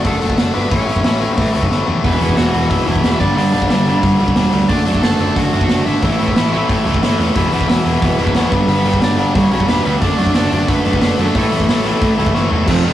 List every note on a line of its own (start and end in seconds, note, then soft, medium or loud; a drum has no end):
0.04 0.15 F#1 medium
0.04 0.21 D3 loud
0.04 0.20 A3 loud
0.04 0.52 A3 medium
0.04 0.20 D4 loud
0.04 0.56 A4 medium
0.04 kick loud
0.04 open hi-hat medium
0.21 0.33 F#1 loud
0.21 0.36 D3 medium
0.21 0.37 A3 medium
0.21 0.37 D4 loud
0.21 open hi-hat medium
0.30 kick medium
0.38 0.49 F#1 medium
0.38 0.53 D3 medium
0.38 0.53 A3 medium
0.38 0.52 D4 medium
0.38 snare loud
0.38 open hi-hat medium
0.54 0.66 G1 medium
0.54 0.70 D3 medium
0.54 0.70 A3 medium
0.54 0.71 B3 medium
0.54 0.70 D4 medium
0.54 0.69 B4 medium
0.54 open hi-hat medium
0.70 0.82 A1 medium
0.70 0.86 A2 medium
0.70 0.86 E3 loud
0.70 0.85 A3 loud
0.70 1.67 C#4 medium
0.70 1.38 C#5 medium
0.70 kick loud
0.70 open hi-hat medium
0.86 0.98 A1 medium
0.86 1.02 A2 medium
0.86 1.03 E3 medium
0.86 1.03 A3 medium
0.86 open hi-hat medium
0.96 kick medium
1.04 1.26 A1 medium
1.04 1.20 A2 medium
1.04 1.19 E3 medium
1.04 1.19 A3 medium
1.04 snare loud
1.04 open hi-hat medium
1.20 1.36 A2 medium
1.20 1.36 E3 medium
1.20 1.37 A3 loud
1.20 open hi-hat medium
1.37 1.53 A2 medium
1.37 1.48 A2 medium
1.37 1.53 E3 loud
1.37 1.52 A3 loud
1.37 1.66 B4 medium
1.37 kick loud
1.37 open hi-hat medium
1.54 1.65 C#2 loud
1.54 1.69 A2 medium
1.54 1.70 E3 medium
1.54 1.70 A3 medium
1.54 open hi-hat medium
1.63 kick medium
1.70 1.82 G1 medium
1.70 1.86 A2 medium
1.70 1.85 E3 medium
1.70 1.85 A3 medium
1.70 snare medium
1.86 1.98 E2 medium
1.86 2.03 A2 medium
1.86 2.03 E3 medium
1.86 2.03 A3 medium
1.86 floor tom medium
2.04 2.15 E1 loud
2.04 2.20 E2 loud
2.04 2.19 B2 loud
2.04 2.19 E3 loud
2.04 2.36 B3 medium
2.04 2.36 B4 medium
2.04 kick loud
2.04 open hi-hat medium
2.20 2.31 E2 medium
2.20 2.35 E2 medium
2.20 2.36 B2 medium
2.20 2.36 E3 medium
2.20 open hi-hat medium
2.29 kick medium
2.37 2.48 E1 medium
2.37 2.53 E2 medium
2.37 2.52 B2 medium
2.37 2.52 E3 medium
2.37 2.69 F#4 medium
2.37 2.69 F#5 medium
2.37 snare loud
2.37 open hi-hat medium
2.53 2.64 E1 medium
2.53 2.70 E2 medium
2.53 2.70 B2 medium
2.53 2.70 E3 loud
2.53 open hi-hat medium
2.70 2.81 E1 medium
2.70 2.86 E2 loud
2.70 2.86 B2 loud
2.70 2.85 E3 loud
2.70 3.18 E4 medium
2.70 3.17 E5 loud
2.70 kick loud
2.70 open hi-hat medium
2.86 2.97 E1 loud
2.86 3.02 E2 medium
2.86 3.02 B2 medium
2.86 3.03 E3 medium
2.86 open hi-hat medium
2.96 kick medium
3.03 3.14 E1 medium
3.03 3.19 E2 medium
3.03 3.19 B2 medium
3.03 3.20 E3 medium
3.03 snare loud
3.03 open hi-hat medium
3.19 3.31 G1 medium
3.19 3.35 G2 medium
3.19 3.35 D3 medium
3.19 3.35 G3 medium
3.19 3.37 D4 medium
3.19 3.36 D5 medium
3.19 kick medium
3.19 open hi-hat soft
3.36 3.47 G1 medium
3.36 3.51 G2 medium
3.36 3.52 D3 loud
3.36 3.52 G3 medium
3.36 4.00 D4 medium
3.36 3.99 D5 medium
3.36 open hi-hat medium
3.52 3.64 G1 medium
3.52 3.70 G2 medium
3.52 3.69 D3 loud
3.52 3.69 G3 medium
3.52 open hi-hat medium
3.62 kick medium
3.70 3.91 G1 loud
3.70 3.85 G2 medium
3.70 3.85 D3 medium
3.70 3.86 G3 medium
3.70 snare loud
3.70 open hi-hat medium
3.86 4.03 G2 medium
3.86 4.02 D3 medium
3.86 4.01 G3 loud
3.86 open hi-hat medium
4.03 4.14 G2 medium
4.03 4.18 G2 medium
4.03 4.19 D3 loud
4.03 4.20 G3 loud
4.03 kick loud
4.03 open hi-hat medium
4.20 4.31 B1 loud
4.20 4.36 G2 medium
4.20 4.36 D3 loud
4.20 4.35 G3 medium
4.20 open hi-hat medium
4.28 kick medium
4.36 4.47 E1 medium
4.36 4.51 G2 medium
4.36 4.52 D3 medium
4.36 4.52 G3 loud
4.36 snare loud
4.36 open hi-hat medium
4.52 4.63 D2 medium
4.52 4.68 G2 medium
4.52 4.68 D3 medium
4.52 4.69 G3 medium
4.52 open hi-hat medium
4.69 4.80 F#1 medium
4.69 4.85 D3 loud
4.69 4.86 A3 medium
4.69 4.85 D4 loud
4.69 5.01 D4 medium
4.69 5.00 D5 medium
4.69 kick loud
4.69 open hi-hat medium
4.86 4.97 F#2 medium
4.86 5.02 D3 medium
4.86 5.03 A3 medium
4.86 5.03 D4 medium
4.86 open hi-hat medium
4.95 kick medium
5.02 5.13 F#1 medium
5.02 5.19 D3 medium
5.02 5.20 A3 medium
5.02 5.19 D4 medium
5.02 5.34 A4 medium
5.02 5.37 A5 loud
5.02 snare loud
5.02 open hi-hat medium
5.19 5.30 F#1 medium
5.19 5.36 D3 medium
5.19 5.36 A3 medium
5.19 5.37 D4 medium
5.19 open hi-hat soft
5.36 5.47 F#1 medium
5.36 5.52 D3 loud
5.36 5.52 A3 loud
5.36 5.52 D4 loud
5.36 5.84 F#4 medium
5.36 5.86 F#5 loud
5.36 kick loud
5.36 open hi-hat medium
5.53 5.64 F#1 medium
5.53 5.68 D3 medium
5.53 5.69 A3 medium
5.53 5.69 D4 loud
5.53 open hi-hat soft
5.61 kick medium
5.69 5.80 F#1 medium
5.69 5.85 D3 medium
5.69 5.86 A3 medium
5.69 5.85 D4 medium
5.69 snare loud
5.69 open hi-hat medium
5.86 5.97 G#1 medium
5.86 6.02 D3 medium
5.86 6.02 A3 medium
5.86 6.02 D4 medium
5.86 6.03 E4 medium
5.86 6.02 E5 medium
5.86 open hi-hat medium
6.02 6.13 A1 loud
6.02 6.18 A2 loud
6.02 6.19 E3 loud
6.02 6.17 A3 loud
6.02 6.67 E4 medium
6.02 6.65 E5 medium
6.02 kick loud
6.02 open hi-hat medium
6.18 6.30 A1 medium
6.18 6.34 A2 medium
6.18 6.35 E3 medium
6.18 6.34 A3 medium
6.18 open hi-hat medium
6.28 kick medium
6.35 6.57 A1 loud
6.35 6.52 A2 medium
6.35 6.52 E3 medium
6.35 6.51 A3 medium
6.35 snare loud
6.35 open hi-hat medium
6.53 6.68 A2 medium
6.53 6.68 E3 medium
6.53 6.68 A3 loud
6.53 open hi-hat soft
6.69 6.85 A2 medium
6.69 6.80 A2 medium
6.69 6.84 E3 loud
6.69 6.84 A3 loud
6.69 kick loud
6.69 open hi-hat medium
6.85 6.96 C#2 loud
6.85 7.01 A2 medium
6.85 7.01 E3 medium
6.85 7.02 A3 medium
6.85 open hi-hat soft
6.94 kick medium
7.02 7.13 G1 medium
7.02 7.19 A2 medium
7.02 7.19 E3 medium
7.02 7.18 A3 medium
7.02 snare loud
7.02 open hi-hat medium
7.19 7.29 E2 medium
7.19 7.35 A2 medium
7.19 7.35 E3 medium
7.19 7.35 A3 medium
7.19 open hi-hat medium
7.35 7.46 E1 medium
7.35 7.52 E2 medium
7.35 7.52 B2 loud
7.35 7.51 E3 loud
7.35 7.67 E4 medium
7.35 7.67 E5 loud
7.35 kick loud
7.35 open hi-hat medium
7.52 7.63 E2 medium
7.52 7.67 E2 medium
7.52 7.68 B2 medium
7.52 7.68 E3 loud
7.52 open hi-hat medium
7.61 kick medium
7.68 7.79 E1 medium
7.68 7.85 E2 medium
7.68 7.84 B2 medium
7.68 7.84 E3 medium
7.68 8.01 E4 medium
7.68 8.02 E5 loud
7.68 snare loud
7.68 open hi-hat medium
7.85 7.96 E1 medium
7.85 8.01 E2 medium
7.85 8.02 B2 medium
7.85 8.02 E3 medium
7.85 open hi-hat medium
8.02 8.13 E1 loud
8.02 8.18 E2 loud
8.02 8.18 B2 loud
8.02 8.17 E3 loud
8.02 8.65 B3 medium
8.02 8.68 B4 medium
8.02 kick loud
8.02 open hi-hat medium
8.18 8.29 E1 medium
8.18 8.33 E2 medium
8.18 8.34 B2 medium
8.18 8.34 E3 loud
8.18 open hi-hat medium
8.27 kick loud
8.34 8.45 E1 medium
8.34 8.51 E2 medium
8.34 8.51 B2 medium
8.34 8.51 E3 medium
8.34 snare loud
8.34 open hi-hat medium
8.51 8.63 G1 medium
8.51 8.67 G2 medium
8.51 8.67 D3 medium
8.51 8.67 G3 medium
8.51 kick loud
8.51 open hi-hat medium
8.68 8.78 G1 loud
8.68 8.84 G2 medium
8.68 8.84 D3 loud
8.68 8.85 G3 loud
8.68 9.00 B3 medium
8.68 9.03 B4 medium
8.68 open hi-hat medium
8.84 8.95 G1 medium
8.84 9.00 G2 medium
8.84 9.00 D3 medium
8.84 8.99 G3 loud
8.84 open hi-hat medium
8.94 kick medium
9.00 9.22 G1 medium
9.00 9.16 G2 medium
9.00 9.16 D3 medium
9.00 9.16 G3 loud
9.00 9.36 D5 loud
9.00 snare loud
9.00 open hi-hat medium
9.04 9.34 D4 medium
9.17 9.34 G2 medium
9.17 9.33 D3 loud
9.17 9.33 G3 medium
9.17 open hi-hat soft
9.34 9.46 G2 loud
9.34 9.50 G2 medium
9.34 9.50 D3 loud
9.34 9.50 G3 loud
9.34 9.68 C#4 medium
9.34 9.67 C#5 loud
9.34 kick loud
9.34 open hi-hat medium
9.51 9.62 B1 loud
9.51 9.67 G2 medium
9.51 9.67 D3 medium
9.51 9.67 G3 loud
9.51 open hi-hat soft
9.60 kick medium
9.68 9.79 E1 medium
9.68 9.84 G2 medium
9.68 9.85 D3 medium
9.68 9.85 G3 loud
9.68 9.92 B3 medium
9.68 9.92 B4 loud
9.68 snare loud
9.68 open hi-hat medium
9.85 9.96 D2 medium
9.85 10.01 G2 medium
9.85 10.00 D3 medium
9.85 10.01 G3 medium
9.85 open hi-hat medium
10.01 10.12 F#1 loud
10.01 10.17 D3 medium
10.01 10.17 A3 loud
10.01 10.16 D4 loud
10.01 10.34 D4 medium
10.01 10.34 D5 loud
10.01 kick loud
10.01 open hi-hat medium
10.17 10.29 F#2 medium
10.17 10.32 D3 medium
10.17 10.34 A3 medium
10.17 10.33 D4 medium
10.17 open hi-hat medium
10.27 kick medium
10.34 10.46 F#1 medium
10.34 10.51 D3 medium
10.34 10.51 A3 medium
10.34 10.50 D4 loud
10.34 10.66 D4 medium
10.34 10.69 D5 medium
10.34 snare loud
10.34 open hi-hat medium
10.51 10.63 F#1 loud
10.51 10.67 D3 medium
10.51 10.68 A3 medium
10.51 10.67 D4 loud
10.51 open hi-hat medium
10.68 10.79 F#1 medium
10.68 10.85 D3 loud
10.68 10.85 A3 loud
10.68 11.15 B3 medium
10.68 10.84 D4 loud
10.68 11.20 B4 medium
10.68 kick loud
10.68 open hi-hat medium
10.85 10.96 F#1 loud
10.85 11.00 D3 medium
10.85 11.01 A3 medium
10.85 11.01 D4 loud
10.85 open hi-hat medium
10.93 kick medium
11.01 11.12 F#1 medium
11.01 11.18 D3 medium
11.01 11.18 A3 medium
11.01 11.17 D4 loud
11.01 snare loud
11.01 open hi-hat medium
11.18 11.29 F#2 medium
11.18 11.35 D3 medium
11.18 11.35 A3 medium
11.18 12.31 A3 medium
11.18 11.34 D4 medium
11.18 12.32 A4 medium
11.18 open hi-hat medium
11.35 11.46 A1 medium
11.35 11.51 A2 medium
11.35 11.51 E3 medium
11.35 11.50 A3 loud
11.35 kick loud
11.35 open hi-hat medium
11.52 11.63 A1 medium
11.52 11.67 A2 medium
11.52 11.68 E3 medium
11.52 11.68 A3 medium
11.52 open hi-hat medium
11.60 kick medium
11.69 11.89 A1 medium
11.69 11.84 A2 medium
11.69 11.84 E3 medium
11.69 11.84 A3 medium
11.69 snare loud
11.69 open hi-hat medium
11.85 12.01 A2 medium
11.85 12.01 E3 medium
11.85 12.02 A3 medium
11.85 open hi-hat medium
12.02 12.12 A2 medium
12.02 12.18 A2 medium
12.02 12.18 E3 medium
12.02 12.18 A3 loud
12.02 kick loud
12.02 open hi-hat medium
12.19 12.29 C#2 medium
12.19 12.33 A2 medium
12.19 12.34 E3 medium
12.19 12.34 A3 medium
12.19 open hi-hat medium
12.26 kick medium
12.35 12.46 G1 medium
12.35 12.50 A2 medium
12.35 12.50 E3 medium
12.35 12.50 A3 medium
12.35 snare medium
12.51 12.62 E2 medium
12.51 12.67 A2 medium
12.51 12.67 E3 medium
12.51 12.67 A3 medium
12.51 floor tom medium
12.67 12.78 F1 medium
12.67 12.84 F2 medium
12.67 12.84 C3 loud
12.67 12.83 F3 loud
12.67 12.93 A3 medium
12.67 12.93 A4 medium
12.67 kick loud
12.67 crash loud
12.84 12.93 F1 medium
12.84 12.93 F2 medium
12.84 12.93 C3 medium
12.84 12.93 F3 loud